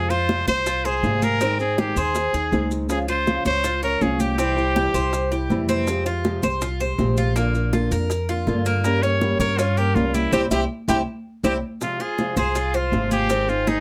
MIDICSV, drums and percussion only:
0, 0, Header, 1, 2, 480
1, 0, Start_track
1, 0, Key_signature, -4, "minor"
1, 0, Tempo, 371747
1, 1817, Time_signature, 4, 2, 24, 8
1, 17820, End_track
2, 0, Start_track
2, 0, Title_t, "Drums"
2, 134, Note_on_c, 9, 63, 34
2, 135, Note_on_c, 9, 70, 28
2, 263, Note_off_c, 9, 63, 0
2, 264, Note_off_c, 9, 70, 0
2, 374, Note_on_c, 9, 63, 87
2, 375, Note_on_c, 9, 60, 54
2, 380, Note_on_c, 9, 70, 29
2, 503, Note_off_c, 9, 63, 0
2, 504, Note_off_c, 9, 60, 0
2, 509, Note_off_c, 9, 70, 0
2, 614, Note_on_c, 9, 63, 81
2, 616, Note_on_c, 9, 70, 68
2, 618, Note_on_c, 9, 60, 29
2, 743, Note_off_c, 9, 63, 0
2, 746, Note_off_c, 9, 70, 0
2, 747, Note_off_c, 9, 60, 0
2, 857, Note_on_c, 9, 70, 83
2, 858, Note_on_c, 9, 63, 33
2, 860, Note_on_c, 9, 60, 64
2, 986, Note_off_c, 9, 70, 0
2, 987, Note_off_c, 9, 63, 0
2, 989, Note_off_c, 9, 60, 0
2, 1094, Note_on_c, 9, 63, 32
2, 1099, Note_on_c, 9, 70, 24
2, 1101, Note_on_c, 9, 60, 30
2, 1223, Note_off_c, 9, 63, 0
2, 1228, Note_off_c, 9, 70, 0
2, 1231, Note_off_c, 9, 60, 0
2, 1332, Note_on_c, 9, 63, 73
2, 1339, Note_on_c, 9, 60, 29
2, 1339, Note_on_c, 9, 61, 72
2, 1342, Note_on_c, 9, 70, 27
2, 1461, Note_off_c, 9, 63, 0
2, 1468, Note_off_c, 9, 60, 0
2, 1468, Note_off_c, 9, 61, 0
2, 1472, Note_off_c, 9, 70, 0
2, 1577, Note_on_c, 9, 63, 83
2, 1580, Note_on_c, 9, 70, 65
2, 1581, Note_on_c, 9, 60, 32
2, 1706, Note_off_c, 9, 63, 0
2, 1709, Note_off_c, 9, 70, 0
2, 1710, Note_off_c, 9, 60, 0
2, 1818, Note_on_c, 9, 70, 75
2, 1819, Note_on_c, 9, 60, 58
2, 1819, Note_on_c, 9, 63, 33
2, 1947, Note_off_c, 9, 70, 0
2, 1948, Note_off_c, 9, 60, 0
2, 1948, Note_off_c, 9, 63, 0
2, 2060, Note_on_c, 9, 70, 29
2, 2065, Note_on_c, 9, 63, 34
2, 2189, Note_off_c, 9, 70, 0
2, 2195, Note_off_c, 9, 63, 0
2, 2299, Note_on_c, 9, 60, 57
2, 2304, Note_on_c, 9, 70, 26
2, 2305, Note_on_c, 9, 63, 88
2, 2428, Note_off_c, 9, 60, 0
2, 2433, Note_off_c, 9, 70, 0
2, 2434, Note_off_c, 9, 63, 0
2, 2540, Note_on_c, 9, 70, 72
2, 2542, Note_on_c, 9, 60, 33
2, 2669, Note_off_c, 9, 70, 0
2, 2671, Note_off_c, 9, 60, 0
2, 2776, Note_on_c, 9, 70, 82
2, 2782, Note_on_c, 9, 60, 65
2, 2790, Note_on_c, 9, 63, 32
2, 2906, Note_off_c, 9, 70, 0
2, 2911, Note_off_c, 9, 60, 0
2, 2919, Note_off_c, 9, 63, 0
2, 3021, Note_on_c, 9, 70, 24
2, 3024, Note_on_c, 9, 60, 31
2, 3025, Note_on_c, 9, 63, 32
2, 3150, Note_off_c, 9, 70, 0
2, 3153, Note_off_c, 9, 60, 0
2, 3154, Note_off_c, 9, 63, 0
2, 3261, Note_on_c, 9, 70, 27
2, 3264, Note_on_c, 9, 63, 83
2, 3265, Note_on_c, 9, 60, 29
2, 3265, Note_on_c, 9, 61, 69
2, 3390, Note_off_c, 9, 70, 0
2, 3393, Note_off_c, 9, 63, 0
2, 3394, Note_off_c, 9, 60, 0
2, 3394, Note_off_c, 9, 61, 0
2, 3502, Note_on_c, 9, 70, 62
2, 3504, Note_on_c, 9, 60, 29
2, 3631, Note_off_c, 9, 70, 0
2, 3633, Note_off_c, 9, 60, 0
2, 3737, Note_on_c, 9, 70, 81
2, 3741, Note_on_c, 9, 60, 64
2, 3745, Note_on_c, 9, 63, 33
2, 3867, Note_off_c, 9, 70, 0
2, 3870, Note_off_c, 9, 60, 0
2, 3874, Note_off_c, 9, 63, 0
2, 3983, Note_on_c, 9, 70, 28
2, 3984, Note_on_c, 9, 63, 33
2, 4112, Note_off_c, 9, 70, 0
2, 4113, Note_off_c, 9, 63, 0
2, 4221, Note_on_c, 9, 70, 29
2, 4224, Note_on_c, 9, 60, 53
2, 4228, Note_on_c, 9, 63, 85
2, 4350, Note_off_c, 9, 70, 0
2, 4353, Note_off_c, 9, 60, 0
2, 4357, Note_off_c, 9, 63, 0
2, 4460, Note_on_c, 9, 70, 67
2, 4463, Note_on_c, 9, 60, 29
2, 4466, Note_on_c, 9, 63, 85
2, 4590, Note_off_c, 9, 70, 0
2, 4592, Note_off_c, 9, 60, 0
2, 4595, Note_off_c, 9, 63, 0
2, 4700, Note_on_c, 9, 60, 60
2, 4702, Note_on_c, 9, 70, 87
2, 4708, Note_on_c, 9, 63, 31
2, 4829, Note_off_c, 9, 60, 0
2, 4831, Note_off_c, 9, 70, 0
2, 4838, Note_off_c, 9, 63, 0
2, 4942, Note_on_c, 9, 60, 30
2, 4943, Note_on_c, 9, 70, 26
2, 4945, Note_on_c, 9, 63, 34
2, 5071, Note_off_c, 9, 60, 0
2, 5072, Note_off_c, 9, 70, 0
2, 5075, Note_off_c, 9, 63, 0
2, 5182, Note_on_c, 9, 60, 30
2, 5182, Note_on_c, 9, 61, 71
2, 5183, Note_on_c, 9, 70, 31
2, 5184, Note_on_c, 9, 63, 77
2, 5312, Note_off_c, 9, 60, 0
2, 5312, Note_off_c, 9, 61, 0
2, 5312, Note_off_c, 9, 70, 0
2, 5313, Note_off_c, 9, 63, 0
2, 5420, Note_on_c, 9, 60, 32
2, 5422, Note_on_c, 9, 63, 80
2, 5422, Note_on_c, 9, 70, 66
2, 5549, Note_off_c, 9, 60, 0
2, 5551, Note_off_c, 9, 63, 0
2, 5552, Note_off_c, 9, 70, 0
2, 5659, Note_on_c, 9, 60, 64
2, 5670, Note_on_c, 9, 70, 85
2, 5788, Note_off_c, 9, 60, 0
2, 5799, Note_off_c, 9, 70, 0
2, 5906, Note_on_c, 9, 63, 34
2, 5909, Note_on_c, 9, 70, 28
2, 6036, Note_off_c, 9, 63, 0
2, 6038, Note_off_c, 9, 70, 0
2, 6142, Note_on_c, 9, 60, 53
2, 6146, Note_on_c, 9, 63, 89
2, 6151, Note_on_c, 9, 70, 27
2, 6271, Note_off_c, 9, 60, 0
2, 6275, Note_off_c, 9, 63, 0
2, 6280, Note_off_c, 9, 70, 0
2, 6384, Note_on_c, 9, 60, 31
2, 6392, Note_on_c, 9, 70, 68
2, 6513, Note_off_c, 9, 60, 0
2, 6521, Note_off_c, 9, 70, 0
2, 6622, Note_on_c, 9, 60, 66
2, 6629, Note_on_c, 9, 63, 32
2, 6630, Note_on_c, 9, 70, 80
2, 6751, Note_off_c, 9, 60, 0
2, 6759, Note_off_c, 9, 63, 0
2, 6759, Note_off_c, 9, 70, 0
2, 6865, Note_on_c, 9, 60, 31
2, 6870, Note_on_c, 9, 63, 31
2, 6873, Note_on_c, 9, 70, 25
2, 6995, Note_off_c, 9, 60, 0
2, 6999, Note_off_c, 9, 63, 0
2, 7002, Note_off_c, 9, 70, 0
2, 7105, Note_on_c, 9, 63, 76
2, 7106, Note_on_c, 9, 60, 30
2, 7106, Note_on_c, 9, 61, 71
2, 7108, Note_on_c, 9, 70, 29
2, 7235, Note_off_c, 9, 60, 0
2, 7235, Note_off_c, 9, 61, 0
2, 7235, Note_off_c, 9, 63, 0
2, 7237, Note_off_c, 9, 70, 0
2, 7343, Note_on_c, 9, 63, 68
2, 7347, Note_on_c, 9, 70, 65
2, 7348, Note_on_c, 9, 60, 31
2, 7472, Note_off_c, 9, 63, 0
2, 7476, Note_off_c, 9, 70, 0
2, 7477, Note_off_c, 9, 60, 0
2, 7585, Note_on_c, 9, 60, 64
2, 7585, Note_on_c, 9, 70, 85
2, 7714, Note_off_c, 9, 60, 0
2, 7714, Note_off_c, 9, 70, 0
2, 7824, Note_on_c, 9, 70, 29
2, 7827, Note_on_c, 9, 63, 35
2, 7953, Note_off_c, 9, 70, 0
2, 7956, Note_off_c, 9, 63, 0
2, 8061, Note_on_c, 9, 70, 25
2, 8066, Note_on_c, 9, 60, 55
2, 8066, Note_on_c, 9, 63, 86
2, 8190, Note_off_c, 9, 70, 0
2, 8195, Note_off_c, 9, 63, 0
2, 8196, Note_off_c, 9, 60, 0
2, 8303, Note_on_c, 9, 70, 69
2, 8304, Note_on_c, 9, 60, 31
2, 8306, Note_on_c, 9, 63, 86
2, 8432, Note_off_c, 9, 70, 0
2, 8433, Note_off_c, 9, 60, 0
2, 8435, Note_off_c, 9, 63, 0
2, 8542, Note_on_c, 9, 70, 82
2, 8545, Note_on_c, 9, 60, 67
2, 8545, Note_on_c, 9, 63, 32
2, 8672, Note_off_c, 9, 70, 0
2, 8674, Note_off_c, 9, 60, 0
2, 8674, Note_off_c, 9, 63, 0
2, 8783, Note_on_c, 9, 70, 27
2, 8784, Note_on_c, 9, 60, 33
2, 8787, Note_on_c, 9, 63, 31
2, 8912, Note_off_c, 9, 70, 0
2, 8913, Note_off_c, 9, 60, 0
2, 8916, Note_off_c, 9, 63, 0
2, 9022, Note_on_c, 9, 60, 30
2, 9022, Note_on_c, 9, 61, 68
2, 9022, Note_on_c, 9, 70, 28
2, 9024, Note_on_c, 9, 63, 79
2, 9151, Note_off_c, 9, 60, 0
2, 9151, Note_off_c, 9, 61, 0
2, 9151, Note_off_c, 9, 70, 0
2, 9154, Note_off_c, 9, 63, 0
2, 9260, Note_on_c, 9, 70, 66
2, 9262, Note_on_c, 9, 60, 30
2, 9271, Note_on_c, 9, 63, 80
2, 9389, Note_off_c, 9, 70, 0
2, 9391, Note_off_c, 9, 60, 0
2, 9400, Note_off_c, 9, 63, 0
2, 9500, Note_on_c, 9, 60, 64
2, 9506, Note_on_c, 9, 63, 35
2, 9506, Note_on_c, 9, 70, 80
2, 9629, Note_off_c, 9, 60, 0
2, 9635, Note_off_c, 9, 63, 0
2, 9635, Note_off_c, 9, 70, 0
2, 9745, Note_on_c, 9, 70, 27
2, 9749, Note_on_c, 9, 63, 33
2, 9874, Note_off_c, 9, 70, 0
2, 9878, Note_off_c, 9, 63, 0
2, 9979, Note_on_c, 9, 60, 53
2, 9980, Note_on_c, 9, 63, 91
2, 9987, Note_on_c, 9, 70, 26
2, 10108, Note_off_c, 9, 60, 0
2, 10109, Note_off_c, 9, 63, 0
2, 10116, Note_off_c, 9, 70, 0
2, 10219, Note_on_c, 9, 60, 31
2, 10223, Note_on_c, 9, 70, 70
2, 10348, Note_off_c, 9, 60, 0
2, 10352, Note_off_c, 9, 70, 0
2, 10456, Note_on_c, 9, 60, 64
2, 10461, Note_on_c, 9, 63, 33
2, 10467, Note_on_c, 9, 70, 86
2, 10585, Note_off_c, 9, 60, 0
2, 10590, Note_off_c, 9, 63, 0
2, 10596, Note_off_c, 9, 70, 0
2, 10699, Note_on_c, 9, 60, 33
2, 10699, Note_on_c, 9, 63, 32
2, 10707, Note_on_c, 9, 70, 29
2, 10828, Note_off_c, 9, 60, 0
2, 10828, Note_off_c, 9, 63, 0
2, 10836, Note_off_c, 9, 70, 0
2, 10936, Note_on_c, 9, 63, 77
2, 10938, Note_on_c, 9, 60, 32
2, 10938, Note_on_c, 9, 61, 71
2, 10942, Note_on_c, 9, 70, 29
2, 11066, Note_off_c, 9, 63, 0
2, 11067, Note_off_c, 9, 60, 0
2, 11067, Note_off_c, 9, 61, 0
2, 11071, Note_off_c, 9, 70, 0
2, 11178, Note_on_c, 9, 60, 32
2, 11179, Note_on_c, 9, 70, 70
2, 11307, Note_off_c, 9, 60, 0
2, 11308, Note_off_c, 9, 70, 0
2, 11418, Note_on_c, 9, 60, 60
2, 11422, Note_on_c, 9, 63, 36
2, 11422, Note_on_c, 9, 70, 81
2, 11547, Note_off_c, 9, 60, 0
2, 11551, Note_off_c, 9, 63, 0
2, 11551, Note_off_c, 9, 70, 0
2, 11659, Note_on_c, 9, 63, 34
2, 11660, Note_on_c, 9, 70, 29
2, 11788, Note_off_c, 9, 63, 0
2, 11789, Note_off_c, 9, 70, 0
2, 11896, Note_on_c, 9, 60, 58
2, 11896, Note_on_c, 9, 63, 85
2, 11901, Note_on_c, 9, 70, 26
2, 12025, Note_off_c, 9, 60, 0
2, 12026, Note_off_c, 9, 63, 0
2, 12031, Note_off_c, 9, 70, 0
2, 12135, Note_on_c, 9, 63, 82
2, 12136, Note_on_c, 9, 60, 32
2, 12144, Note_on_c, 9, 70, 76
2, 12265, Note_off_c, 9, 60, 0
2, 12265, Note_off_c, 9, 63, 0
2, 12273, Note_off_c, 9, 70, 0
2, 12377, Note_on_c, 9, 60, 71
2, 12379, Note_on_c, 9, 63, 31
2, 12380, Note_on_c, 9, 70, 84
2, 12506, Note_off_c, 9, 60, 0
2, 12508, Note_off_c, 9, 63, 0
2, 12509, Note_off_c, 9, 70, 0
2, 12617, Note_on_c, 9, 60, 34
2, 12617, Note_on_c, 9, 63, 32
2, 12623, Note_on_c, 9, 70, 25
2, 12746, Note_off_c, 9, 63, 0
2, 12747, Note_off_c, 9, 60, 0
2, 12752, Note_off_c, 9, 70, 0
2, 12857, Note_on_c, 9, 60, 33
2, 12857, Note_on_c, 9, 61, 74
2, 12859, Note_on_c, 9, 63, 75
2, 12865, Note_on_c, 9, 70, 28
2, 12986, Note_off_c, 9, 60, 0
2, 12986, Note_off_c, 9, 61, 0
2, 12988, Note_off_c, 9, 63, 0
2, 12994, Note_off_c, 9, 70, 0
2, 13094, Note_on_c, 9, 63, 82
2, 13097, Note_on_c, 9, 60, 32
2, 13100, Note_on_c, 9, 70, 65
2, 13223, Note_off_c, 9, 63, 0
2, 13226, Note_off_c, 9, 60, 0
2, 13229, Note_off_c, 9, 70, 0
2, 13331, Note_on_c, 9, 63, 90
2, 13336, Note_on_c, 9, 61, 90
2, 13338, Note_on_c, 9, 70, 92
2, 13461, Note_off_c, 9, 63, 0
2, 13466, Note_off_c, 9, 61, 0
2, 13467, Note_off_c, 9, 70, 0
2, 13574, Note_on_c, 9, 61, 96
2, 13574, Note_on_c, 9, 63, 97
2, 13575, Note_on_c, 9, 70, 101
2, 13703, Note_off_c, 9, 61, 0
2, 13703, Note_off_c, 9, 63, 0
2, 13704, Note_off_c, 9, 70, 0
2, 14053, Note_on_c, 9, 61, 89
2, 14053, Note_on_c, 9, 63, 87
2, 14062, Note_on_c, 9, 70, 106
2, 14182, Note_off_c, 9, 63, 0
2, 14183, Note_off_c, 9, 61, 0
2, 14191, Note_off_c, 9, 70, 0
2, 14772, Note_on_c, 9, 61, 82
2, 14775, Note_on_c, 9, 70, 95
2, 14778, Note_on_c, 9, 63, 96
2, 14902, Note_off_c, 9, 61, 0
2, 14904, Note_off_c, 9, 70, 0
2, 14907, Note_off_c, 9, 63, 0
2, 15252, Note_on_c, 9, 70, 86
2, 15255, Note_on_c, 9, 60, 62
2, 15258, Note_on_c, 9, 63, 34
2, 15381, Note_off_c, 9, 70, 0
2, 15384, Note_off_c, 9, 60, 0
2, 15387, Note_off_c, 9, 63, 0
2, 15496, Note_on_c, 9, 63, 31
2, 15496, Note_on_c, 9, 70, 29
2, 15625, Note_off_c, 9, 70, 0
2, 15626, Note_off_c, 9, 63, 0
2, 15730, Note_on_c, 9, 60, 54
2, 15732, Note_on_c, 9, 63, 91
2, 15732, Note_on_c, 9, 70, 28
2, 15860, Note_off_c, 9, 60, 0
2, 15861, Note_off_c, 9, 63, 0
2, 15861, Note_off_c, 9, 70, 0
2, 15970, Note_on_c, 9, 63, 83
2, 15970, Note_on_c, 9, 70, 69
2, 15972, Note_on_c, 9, 60, 33
2, 16099, Note_off_c, 9, 63, 0
2, 16099, Note_off_c, 9, 70, 0
2, 16101, Note_off_c, 9, 60, 0
2, 16210, Note_on_c, 9, 60, 61
2, 16210, Note_on_c, 9, 70, 87
2, 16211, Note_on_c, 9, 63, 31
2, 16339, Note_off_c, 9, 60, 0
2, 16339, Note_off_c, 9, 70, 0
2, 16340, Note_off_c, 9, 63, 0
2, 16447, Note_on_c, 9, 70, 27
2, 16452, Note_on_c, 9, 60, 32
2, 16453, Note_on_c, 9, 63, 33
2, 16576, Note_off_c, 9, 70, 0
2, 16581, Note_off_c, 9, 60, 0
2, 16582, Note_off_c, 9, 63, 0
2, 16692, Note_on_c, 9, 63, 84
2, 16692, Note_on_c, 9, 70, 29
2, 16695, Note_on_c, 9, 60, 33
2, 16695, Note_on_c, 9, 61, 76
2, 16821, Note_off_c, 9, 70, 0
2, 16822, Note_off_c, 9, 63, 0
2, 16824, Note_off_c, 9, 60, 0
2, 16824, Note_off_c, 9, 61, 0
2, 16933, Note_on_c, 9, 70, 69
2, 16934, Note_on_c, 9, 60, 32
2, 16935, Note_on_c, 9, 63, 82
2, 17062, Note_off_c, 9, 70, 0
2, 17063, Note_off_c, 9, 60, 0
2, 17064, Note_off_c, 9, 63, 0
2, 17168, Note_on_c, 9, 70, 77
2, 17172, Note_on_c, 9, 60, 60
2, 17175, Note_on_c, 9, 63, 36
2, 17297, Note_off_c, 9, 70, 0
2, 17301, Note_off_c, 9, 60, 0
2, 17304, Note_off_c, 9, 63, 0
2, 17412, Note_on_c, 9, 70, 29
2, 17416, Note_on_c, 9, 63, 35
2, 17541, Note_off_c, 9, 70, 0
2, 17545, Note_off_c, 9, 63, 0
2, 17651, Note_on_c, 9, 60, 50
2, 17651, Note_on_c, 9, 70, 27
2, 17654, Note_on_c, 9, 63, 86
2, 17780, Note_off_c, 9, 60, 0
2, 17780, Note_off_c, 9, 70, 0
2, 17783, Note_off_c, 9, 63, 0
2, 17820, End_track
0, 0, End_of_file